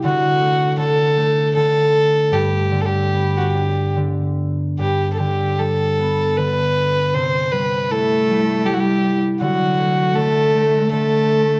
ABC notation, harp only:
X:1
M:3/4
L:1/8
Q:1/4=78
K:G
V:1 name="Harp" clef=bass
D, A, D, A, D,2 | G,, D, B, D D,2 | G,, D, G, B, D,2 | C, G, E G, E2 |
D, A, D, A, D,2 |]